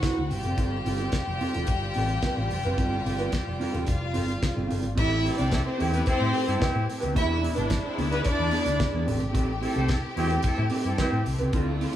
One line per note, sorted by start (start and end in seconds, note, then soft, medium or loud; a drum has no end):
0.00 0.27 D3 medium
0.00 0.27 A3 medium
0.00 4.94 C4 medium
0.00 0.27 E4 medium
0.00 0.20 E4 medium
0.00 0.27 F#4 medium
0.00 0.28 F#4 medium
0.00 0.28 F#5 medium
0.00 kick loud
0.00 snare loud
0.00 closed hi-hat medium
0.04 0.16 F#4 medium
0.04 0.15 C5 medium
0.16 0.27 D2 medium
0.16 muted clean electric guitar stroke soft
0.29 0.41 G1 medium
0.29 4.93 G3 medium
0.29 4.94 F4 medium
0.29 3.84 G4 medium
0.29 3.83 G5 medium
0.29 muted clean electric guitar stroke soft
0.29 open hi-hat medium
0.43 0.54 F#1 medium
0.43 0.57 C4 medium
0.43 0.58 F4 medium
0.43 0.58 A4 medium
0.43 closed hi-hat soft
0.58 0.78 G1 medium
0.58 0.75 C4 medium
0.58 0.76 F4 medium
0.58 0.76 A4 medium
0.58 kick medium
0.58 closed hi-hat medium
0.85 1.06 G1 loud
0.85 0.99 C4 medium
0.85 0.99 F4 medium
0.85 0.98 A4 medium
0.85 open hi-hat medium
0.98 1.12 C4 soft
0.98 1.13 F4 medium
0.98 1.13 A4 medium
0.98 closed hi-hat soft
1.12 muted clean electric guitar stroke soft
1.12 kick medium
1.12 snare loud
1.12 closed hi-hat medium
1.27 1.37 F1 medium
1.27 muted clean electric guitar stroke soft
1.41 1.55 C4 medium
1.41 1.54 F4 medium
1.41 1.53 A4 medium
1.41 open hi-hat medium
1.54 1.65 E1 medium
1.54 1.67 C4 soft
1.54 1.68 F4 medium
1.54 1.68 A4 medium
1.54 closed hi-hat medium
1.67 1.88 G1 loud
1.67 muted clean electric guitar stroke soft
1.67 kick loud
1.67 closed hi-hat medium
1.81 muted clean electric guitar stroke soft
1.94 2.16 A1 medium
1.94 2.12 C4 medium
1.94 2.10 F4 medium
1.94 2.08 A4 medium
1.94 open hi-hat medium
2.09 muted clean electric guitar stroke soft
2.09 closed hi-hat soft
2.22 2.40 C4 medium
2.22 2.37 F4 medium
2.22 2.37 B4 medium
2.22 kick loud
2.22 snare loud
2.22 closed hi-hat medium
2.37 2.47 A1 medium
2.37 muted clean electric guitar stroke soft
2.51 2.61 F1 loud
2.51 muted clean electric guitar stroke soft
2.51 open hi-hat medium
2.63 2.75 F#1 medium
2.63 2.77 C4 medium
2.63 2.78 F4 medium
2.63 2.78 B4 medium
2.63 closed hi-hat soft
2.78 2.98 G1 medium
2.78 2.95 C4 medium
2.78 2.96 F4 medium
2.78 2.96 A4 medium
2.78 kick loud
2.78 closed hi-hat medium
3.05 3.26 G1 loud
3.05 3.19 C4 medium
3.05 3.19 F4 medium
3.05 3.18 A4 medium
3.05 open hi-hat medium
3.19 3.32 C4 medium
3.19 3.33 F4 medium
3.19 3.32 B4 medium
3.19 closed hi-hat soft
3.32 kick loud
3.32 snare loud
3.32 closed hi-hat medium
3.47 3.57 F1 medium
3.47 muted clean electric guitar stroke soft
3.60 3.74 C4 loud
3.60 3.74 F4 loud
3.60 3.72 A4 medium
3.60 open hi-hat medium
3.73 3.84 E1 medium
3.73 3.86 C4 medium
3.73 3.87 F4 medium
3.73 3.87 A4 medium
3.73 closed hi-hat medium
3.87 4.15 F1 medium
3.87 4.68 F4 medium
3.87 4.68 F5 medium
3.87 muted clean electric guitar stroke medium
3.87 kick loud
3.87 closed hi-hat medium
4.01 muted clean electric guitar stroke medium
4.14 4.35 G1 medium
4.14 4.31 C4 medium
4.14 4.27 F4 medium
4.14 4.26 A4 loud
4.14 open hi-hat medium
4.28 muted clean electric guitar stroke medium
4.28 closed hi-hat soft
4.41 muted clean electric guitar stroke soft
4.41 kick loud
4.41 snare loud
4.41 closed hi-hat medium
4.54 4.67 G1 medium
4.54 4.67 C4 medium
4.54 4.68 F4 medium
4.54 4.69 A4 medium
4.68 4.84 G1 medium
4.68 4.86 C4 medium
4.68 4.82 F4 medium
4.68 4.81 A4 medium
4.68 open hi-hat medium
4.82 4.94 G#1 medium
4.82 muted clean electric guitar stroke soft
4.82 closed hi-hat soft
4.95 5.28 A1 loud
4.95 7.14 A3 medium
4.95 5.13 C4 medium
4.95 7.14 C4 medium
4.95 5.19 E4 loud
4.95 5.14 G4 medium
4.95 7.14 G4 medium
4.95 5.15 A4 loud
4.95 5.19 E5 loud
4.95 kick loud
4.95 crash loud
5.23 5.37 C4 medium
5.23 5.36 C4 medium
5.23 5.36 E4 medium
5.23 5.37 G4 medium
5.23 5.36 A4 medium
5.23 open hi-hat medium
5.37 5.59 C2 medium
5.37 5.50 C4 medium
5.37 5.49 D4 medium
5.37 5.51 G4 medium
5.37 5.50 G4 medium
5.37 5.51 A4 medium
5.37 5.50 A4 medium
5.37 5.50 C5 medium
5.37 5.49 D5 medium
5.37 closed hi-hat soft
5.51 5.60 C4 medium
5.51 5.60 E4 medium
5.51 5.60 A4 medium
5.51 muted clean electric guitar stroke soft
5.51 kick loud
5.51 snare loud
5.51 closed hi-hat medium
5.65 5.77 C4 medium
5.65 5.77 C5 medium
5.65 muted clean electric guitar stroke soft
5.78 6.00 E2 medium
5.78 5.92 C4 medium
5.78 6.01 C4 loud
5.78 6.01 E4 loud
5.78 5.91 G4 loud
5.78 6.02 G4 loud
5.78 5.90 A4 loud
5.78 open hi-hat medium
5.91 6.03 B3 medium
5.91 6.04 C4 medium
5.91 6.05 G4 medium
5.91 6.05 A4 medium
5.91 6.04 B4 medium
5.91 closed hi-hat medium
6.06 6.58 C4 loud
6.06 6.18 C4 loud
6.06 6.18 E4 loud
6.06 6.18 A4 loud
6.06 6.58 C5 loud
6.06 muted clean electric guitar stroke soft
6.06 muted fingered electric bass stroke soft
6.06 kick loud
6.06 closed hi-hat medium
6.19 6.31 A2 medium
6.19 6.29 C4 medium
6.19 6.29 E4 medium
6.19 6.29 G4 medium
6.19 muted clean electric guitar stroke soft
6.32 6.50 C4 medium
6.32 6.47 G4 loud
6.32 6.45 A4 medium
6.32 open hi-hat medium
6.46 6.58 G2 medium
6.46 6.59 C4 loud
6.46 6.59 E4 medium
6.46 6.59 A4 loud
6.46 muted clean electric guitar stroke soft
6.46 closed hi-hat soft
6.59 6.77 C4 medium
6.59 6.83 C4 loud
6.59 6.83 E4 loud
6.59 6.73 G4 medium
6.59 6.83 G4 loud
6.59 6.73 B4 medium
6.59 kick loud
6.59 snare loud
6.59 closed hi-hat medium
6.74 6.85 A2 loud
6.74 muted clean electric guitar stroke soft
6.87 muted clean electric guitar stroke soft
6.87 open hi-hat medium
7.00 7.13 D2 medium
7.00 7.14 C4 medium
7.00 7.14 G4 medium
7.00 7.15 B4 medium
7.00 closed hi-hat soft
7.14 7.46 E1 loud
7.14 9.06 G#3 medium
7.14 7.35 B3 medium
7.14 7.35 D4 medium
7.14 9.06 D4 medium
7.14 7.38 E4 loud
7.14 9.06 E4 loud
7.14 7.36 G#4 medium
7.14 7.38 E5 loud
7.14 kick loud
7.14 closed hi-hat medium
7.42 7.55 B3 medium
7.42 7.55 D4 medium
7.42 7.54 G#4 medium
7.42 open hi-hat medium
7.55 7.77 G#1 medium
7.55 7.68 B3 medium
7.55 7.69 D4 medium
7.55 7.68 D4 loud
7.55 7.69 B4 medium
7.55 7.68 D5 medium
7.55 closed hi-hat soft
7.69 muted clean electric guitar stroke medium
7.69 kick loud
7.69 snare loud
7.69 closed hi-hat medium
7.84 7.95 C4 medium
7.84 7.95 C5 medium
7.84 muted clean electric guitar stroke soft
7.98 8.18 D2 medium
7.98 8.12 B3 medium
7.98 8.11 D4 medium
7.98 8.10 G#4 medium
7.98 open hi-hat medium
8.11 8.22 B3 loud
8.11 8.24 B3 medium
8.11 8.25 D4 medium
8.11 8.25 G#4 medium
8.11 8.22 B4 loud
8.11 closed hi-hat medium
8.24 9.03 D4 loud
8.24 9.03 D5 loud
8.24 muted clean electric guitar stroke medium
8.24 muted fingered electric bass stroke soft
8.24 kick loud
8.24 closed hi-hat medium
8.39 8.49 E2 loud
8.39 muted clean electric guitar stroke medium
8.51 8.69 B3 medium
8.51 8.66 D4 medium
8.51 8.64 G#4 loud
8.51 open hi-hat medium
8.66 8.76 D2 medium
8.66 muted clean electric guitar stroke soft
8.66 closed hi-hat medium
8.79 muted clean electric guitar stroke soft
8.79 kick loud
8.79 snare loud
8.79 closed hi-hat medium
8.93 9.03 E2 medium
8.93 9.05 B3 soft
8.93 9.06 D4 medium
8.93 9.06 G#4 medium
9.06 9.17 A1 loud
9.06 11.96 A3 medium
9.06 9.23 C4 medium
9.06 11.96 C4 medium
9.06 9.20 G4 medium
9.06 11.51 G4 medium
9.06 9.19 A4 loud
9.06 open hi-hat medium
9.20 9.35 G#1 medium
9.20 muted clean electric guitar stroke soft
9.20 closed hi-hat soft
9.33 9.65 A1 loud
9.33 9.51 C4 loud
9.33 9.51 G4 loud
9.33 9.52 A4 loud
9.33 kick loud
9.33 closed hi-hat medium
9.61 9.75 C4 medium
9.61 9.73 C4 medium
9.61 9.73 E4 medium
9.61 9.75 G4 medium
9.61 9.73 A4 loud
9.61 9.74 A4 medium
9.61 open hi-hat medium
9.75 9.96 C2 loud
9.75 9.89 C4 medium
9.75 9.86 G4 medium
9.75 9.89 G4 medium
9.75 9.89 A4 medium
9.75 9.86 A4 loud
9.75 9.86 C5 loud
9.75 closed hi-hat soft
9.89 9.97 C4 medium
9.89 9.97 E4 medium
9.89 9.97 A4 medium
9.89 kick loud
9.89 snare loud
9.89 closed hi-hat medium
10.03 muted clean electric guitar stroke soft
10.16 10.37 E2 loud
10.16 10.38 C4 loud
10.16 10.31 C4 medium
10.16 10.38 E4 loud
10.16 10.38 G4 loud
10.16 10.30 G4 medium
10.16 10.29 A4 loud
10.16 open hi-hat medium
10.30 10.43 C4 medium
10.30 10.43 G4 medium
10.30 10.43 A4 medium
10.30 closed hi-hat medium
10.43 10.55 C4 loud
10.43 10.55 E4 loud
10.43 10.55 A4 loud
10.43 muted clean electric guitar stroke soft
10.43 muted fingered electric bass stroke soft
10.43 kick loud
10.43 closed hi-hat medium
10.57 10.68 A2 loud
10.57 10.66 C4 medium
10.57 10.66 E4 medium
10.57 10.66 G4 medium
10.57 muted clean electric guitar stroke medium
10.70 10.88 C4 medium
10.70 10.86 G4 loud
10.70 10.84 A4 medium
10.70 open hi-hat medium
10.84 10.95 G2 medium
10.84 10.96 C4 loud
10.84 10.96 E4 medium
10.84 10.96 A4 loud
10.84 muted clean electric guitar stroke soft
10.84 closed hi-hat soft
10.98 11.15 C4 medium
10.98 11.21 C4 loud
10.98 11.20 E4 loud
10.98 11.20 G4 loud
10.98 11.12 G4 medium
10.98 11.12 B4 loud
10.98 kick loud
10.98 snare loud
10.98 closed hi-hat medium
11.12 11.22 A2 medium
11.12 muted clean electric guitar stroke soft
11.26 11.36 C2 loud
11.26 muted clean electric guitar stroke soft
11.26 open hi-hat medium
11.38 11.50 C#2 medium
11.38 11.52 C4 medium
11.38 11.53 G4 medium
11.38 11.53 B4 medium
11.38 closed hi-hat soft
11.53 11.84 D2 loud
11.53 11.96 D3 medium
11.53 11.70 C4 medium
11.53 11.96 E4 medium
11.53 11.96 F4 medium
11.53 11.71 F4 loud
11.53 11.71 A4 loud
11.53 kick loud
11.53 closed hi-hat medium
11.81 11.94 C4 medium
11.81 11.94 F4 medium
11.81 11.94 A4 medium
11.81 open hi-hat medium